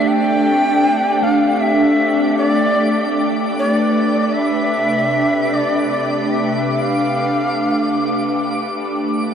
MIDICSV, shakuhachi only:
0, 0, Header, 1, 2, 480
1, 0, Start_track
1, 0, Tempo, 779221
1, 34, Time_signature, 3, 2, 24, 8
1, 5753, End_track
2, 0, Start_track
2, 0, Title_t, "Shakuhachi"
2, 0, Program_c, 0, 77
2, 48, Note_on_c, 0, 79, 117
2, 759, Note_on_c, 0, 77, 90
2, 768, Note_off_c, 0, 79, 0
2, 988, Note_on_c, 0, 76, 93
2, 998, Note_off_c, 0, 77, 0
2, 1463, Note_off_c, 0, 76, 0
2, 1467, Note_on_c, 0, 74, 106
2, 1999, Note_off_c, 0, 74, 0
2, 2211, Note_on_c, 0, 74, 89
2, 2667, Note_on_c, 0, 76, 97
2, 2676, Note_off_c, 0, 74, 0
2, 3410, Note_on_c, 0, 74, 87
2, 3419, Note_off_c, 0, 76, 0
2, 3639, Note_off_c, 0, 74, 0
2, 3643, Note_on_c, 0, 74, 72
2, 3884, Note_on_c, 0, 76, 79
2, 3893, Note_off_c, 0, 74, 0
2, 4137, Note_off_c, 0, 76, 0
2, 4137, Note_on_c, 0, 76, 89
2, 4204, Note_off_c, 0, 76, 0
2, 4204, Note_on_c, 0, 77, 89
2, 5325, Note_off_c, 0, 77, 0
2, 5753, End_track
0, 0, End_of_file